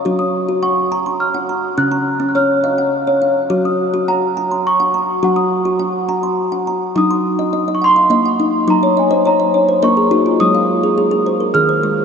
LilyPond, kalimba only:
<<
  \new Staff \with { instrumentName = "Kalimba" } { \time 3/4 \key ges \lydian \tempo 4 = 104 << { f''16 ees'''8. ges''8 aes''16 c'''8. bes''8~ | bes''16 bes''8. des''8 ees''16 ges''8. f''8~ | f''16 ees'''8. ges''8 aes''16 c'''8. bes''8~ | bes''16 ees'''8. ges''8 aes''16 c'''8. bes''8~ |
bes''16 c'''8. ees''8 ges''16 f''8 ges''8. | r16 des''16 ees''16 c''16 des''8 des''16 c''16 bes'16 aes'16 ges'16 f'16~ | f'16 f''8. aes'8 c''16 bes'8 c''8. | } \\ { ges'8 r16 ges'8 r16 bes''8 r16 ges''8 r16 | des'8 r16 des'8 r16 f''8 r16 des''8 r16 | ges'8 r16 ges'8 r16 bes''8 r16 ges''8 r16 | ges'8 r16 ges'8 r16 bes''8 r16 ges''8 r16 |
ees'8 r16 ees''8 ees''8 r16 ees''8 ees'8 | ees'8 r16 ees''8 ees''8 r16 ees''8 ees'8 | aes8 r16 aes'8 aes'8 r16 aes'8 aes8 | } >> }
  \new Staff \with { instrumentName = "Kalimba" } { \clef bass \time 3/4 \key ges \lydian ges8 r2 r8 | des8 r2 r8 | ges8 r2 r8 | ges8 r2 r8 |
ges2 bes4 | ges2 bes4 | ges2 ees4 | }
>>